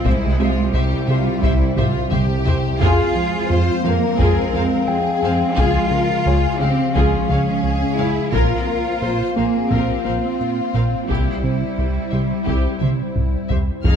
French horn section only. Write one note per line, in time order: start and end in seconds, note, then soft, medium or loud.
0.00 2.78 C5 medium
0.06 2.77 E5 medium
2.82 8.16 G#3 medium
2.82 8.16 F5 medium
8.33 13.49 C5 medium
8.33 11.05 F5 medium
11.10 13.54 E5 soft